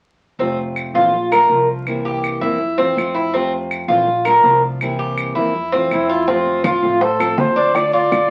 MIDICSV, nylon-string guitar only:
0, 0, Header, 1, 3, 480
1, 0, Start_track
1, 0, Key_signature, -1, "major"
1, 0, Tempo, 367872
1, 514, Time_signature, 4, 2, 24, 8
1, 10831, End_track
2, 0, Start_track
2, 0, Title_t, "Nylon-string guitar"
2, 0, Program_c, 0, 24
2, 516, Note_on_c, 0, 48, 59
2, 524, Note_on_c, 0, 57, 70
2, 532, Note_on_c, 0, 60, 67
2, 533, Note_on_c, 0, 65, 67
2, 1218, Note_off_c, 0, 65, 0
2, 1226, Note_off_c, 0, 60, 0
2, 1227, Note_off_c, 0, 48, 0
2, 1231, Note_off_c, 0, 57, 0
2, 1234, Note_on_c, 0, 65, 62
2, 1242, Note_on_c, 0, 60, 67
2, 1246, Note_on_c, 0, 57, 51
2, 1254, Note_on_c, 0, 52, 53
2, 1465, Note_off_c, 0, 65, 0
2, 1469, Note_off_c, 0, 60, 0
2, 1472, Note_off_c, 0, 57, 0
2, 1476, Note_off_c, 0, 52, 0
2, 1730, Note_on_c, 0, 65, 63
2, 1736, Note_on_c, 0, 62, 58
2, 1749, Note_on_c, 0, 57, 54
2, 1949, Note_off_c, 0, 57, 0
2, 1953, Note_on_c, 0, 53, 45
2, 1954, Note_off_c, 0, 62, 0
2, 1954, Note_off_c, 0, 65, 0
2, 1965, Note_on_c, 0, 57, 49
2, 1969, Note_on_c, 0, 62, 48
2, 1978, Note_on_c, 0, 65, 54
2, 2426, Note_off_c, 0, 53, 0
2, 2430, Note_on_c, 0, 48, 60
2, 2432, Note_off_c, 0, 57, 0
2, 2433, Note_on_c, 0, 52, 58
2, 2434, Note_off_c, 0, 62, 0
2, 2439, Note_off_c, 0, 65, 0
2, 2446, Note_on_c, 0, 58, 67
2, 2447, Note_on_c, 0, 60, 70
2, 2450, Note_on_c, 0, 64, 68
2, 3139, Note_off_c, 0, 64, 0
2, 3145, Note_off_c, 0, 48, 0
2, 3146, Note_off_c, 0, 60, 0
2, 3147, Note_off_c, 0, 52, 0
2, 3153, Note_off_c, 0, 58, 0
2, 3154, Note_on_c, 0, 64, 67
2, 3162, Note_on_c, 0, 60, 65
2, 3166, Note_on_c, 0, 58, 61
2, 3172, Note_on_c, 0, 52, 52
2, 3380, Note_off_c, 0, 52, 0
2, 3380, Note_off_c, 0, 60, 0
2, 3387, Note_off_c, 0, 64, 0
2, 3391, Note_off_c, 0, 58, 0
2, 3628, Note_on_c, 0, 65, 58
2, 3640, Note_on_c, 0, 60, 64
2, 3649, Note_on_c, 0, 57, 55
2, 3651, Note_on_c, 0, 52, 52
2, 3853, Note_off_c, 0, 57, 0
2, 3860, Note_off_c, 0, 60, 0
2, 3864, Note_off_c, 0, 65, 0
2, 3868, Note_on_c, 0, 57, 45
2, 3875, Note_on_c, 0, 60, 50
2, 3876, Note_off_c, 0, 52, 0
2, 3885, Note_on_c, 0, 65, 54
2, 4340, Note_off_c, 0, 57, 0
2, 4347, Note_off_c, 0, 60, 0
2, 4352, Note_off_c, 0, 65, 0
2, 4354, Note_on_c, 0, 48, 61
2, 4356, Note_on_c, 0, 57, 65
2, 4366, Note_on_c, 0, 60, 75
2, 4370, Note_on_c, 0, 65, 70
2, 5047, Note_off_c, 0, 65, 0
2, 5056, Note_off_c, 0, 60, 0
2, 5060, Note_off_c, 0, 57, 0
2, 5062, Note_on_c, 0, 65, 64
2, 5067, Note_off_c, 0, 48, 0
2, 5072, Note_on_c, 0, 60, 64
2, 5076, Note_on_c, 0, 57, 60
2, 5085, Note_on_c, 0, 52, 53
2, 5301, Note_off_c, 0, 57, 0
2, 5301, Note_off_c, 0, 65, 0
2, 5306, Note_off_c, 0, 60, 0
2, 5308, Note_off_c, 0, 52, 0
2, 5557, Note_on_c, 0, 65, 58
2, 5571, Note_on_c, 0, 62, 62
2, 5585, Note_on_c, 0, 57, 54
2, 5783, Note_off_c, 0, 57, 0
2, 5787, Note_off_c, 0, 62, 0
2, 5788, Note_off_c, 0, 65, 0
2, 5789, Note_on_c, 0, 53, 47
2, 5799, Note_on_c, 0, 57, 48
2, 5803, Note_on_c, 0, 62, 57
2, 5810, Note_on_c, 0, 65, 54
2, 6264, Note_off_c, 0, 53, 0
2, 6269, Note_off_c, 0, 57, 0
2, 6271, Note_off_c, 0, 62, 0
2, 6274, Note_off_c, 0, 65, 0
2, 6282, Note_on_c, 0, 48, 61
2, 6286, Note_on_c, 0, 52, 64
2, 6289, Note_on_c, 0, 60, 70
2, 6290, Note_on_c, 0, 58, 64
2, 6296, Note_on_c, 0, 64, 68
2, 6984, Note_off_c, 0, 64, 0
2, 6990, Note_off_c, 0, 48, 0
2, 6992, Note_off_c, 0, 52, 0
2, 6994, Note_off_c, 0, 58, 0
2, 6994, Note_off_c, 0, 60, 0
2, 6999, Note_on_c, 0, 64, 61
2, 7007, Note_on_c, 0, 60, 61
2, 7016, Note_on_c, 0, 52, 51
2, 7017, Note_on_c, 0, 58, 56
2, 7228, Note_off_c, 0, 52, 0
2, 7229, Note_off_c, 0, 64, 0
2, 7233, Note_off_c, 0, 60, 0
2, 7235, Note_off_c, 0, 58, 0
2, 7486, Note_on_c, 0, 65, 65
2, 7496, Note_on_c, 0, 60, 59
2, 7500, Note_on_c, 0, 57, 56
2, 7506, Note_on_c, 0, 52, 54
2, 7712, Note_off_c, 0, 65, 0
2, 7717, Note_off_c, 0, 60, 0
2, 7719, Note_off_c, 0, 57, 0
2, 7722, Note_off_c, 0, 52, 0
2, 7734, Note_on_c, 0, 60, 50
2, 7736, Note_on_c, 0, 57, 44
2, 8195, Note_on_c, 0, 48, 62
2, 8196, Note_off_c, 0, 57, 0
2, 8196, Note_off_c, 0, 60, 0
2, 8205, Note_on_c, 0, 53, 71
2, 8210, Note_on_c, 0, 57, 69
2, 8214, Note_on_c, 0, 60, 64
2, 8219, Note_on_c, 0, 65, 71
2, 8902, Note_off_c, 0, 60, 0
2, 8903, Note_off_c, 0, 65, 0
2, 8905, Note_off_c, 0, 48, 0
2, 8908, Note_on_c, 0, 65, 70
2, 8915, Note_off_c, 0, 53, 0
2, 8917, Note_off_c, 0, 57, 0
2, 8917, Note_on_c, 0, 60, 59
2, 8920, Note_on_c, 0, 53, 51
2, 8922, Note_on_c, 0, 57, 54
2, 9141, Note_off_c, 0, 57, 0
2, 9142, Note_off_c, 0, 53, 0
2, 9142, Note_off_c, 0, 65, 0
2, 9146, Note_off_c, 0, 60, 0
2, 9388, Note_on_c, 0, 65, 64
2, 9398, Note_on_c, 0, 60, 62
2, 9402, Note_on_c, 0, 57, 57
2, 9406, Note_on_c, 0, 53, 53
2, 9606, Note_off_c, 0, 53, 0
2, 9617, Note_off_c, 0, 57, 0
2, 9621, Note_off_c, 0, 60, 0
2, 9621, Note_off_c, 0, 65, 0
2, 9622, Note_on_c, 0, 53, 49
2, 9633, Note_on_c, 0, 57, 47
2, 9637, Note_on_c, 0, 60, 49
2, 9645, Note_on_c, 0, 65, 53
2, 10090, Note_off_c, 0, 57, 0
2, 10092, Note_off_c, 0, 53, 0
2, 10097, Note_on_c, 0, 50, 62
2, 10103, Note_off_c, 0, 65, 0
2, 10105, Note_off_c, 0, 60, 0
2, 10105, Note_on_c, 0, 57, 70
2, 10115, Note_on_c, 0, 62, 73
2, 10118, Note_on_c, 0, 65, 66
2, 10803, Note_off_c, 0, 65, 0
2, 10811, Note_off_c, 0, 57, 0
2, 10815, Note_off_c, 0, 50, 0
2, 10816, Note_off_c, 0, 62, 0
2, 10831, End_track
3, 0, Start_track
3, 0, Title_t, "Muted nylon-string guitar strokes"
3, 1489, Note_on_c, 9, 29, 57
3, 1620, Note_off_c, 9, 29, 0
3, 3386, Note_on_c, 9, 29, 54
3, 3517, Note_off_c, 9, 29, 0
3, 5314, Note_on_c, 9, 29, 53
3, 5444, Note_off_c, 9, 29, 0
3, 7239, Note_on_c, 9, 29, 57
3, 7369, Note_off_c, 9, 29, 0
3, 9156, Note_on_c, 9, 29, 57
3, 9286, Note_off_c, 9, 29, 0
3, 10831, End_track
0, 0, End_of_file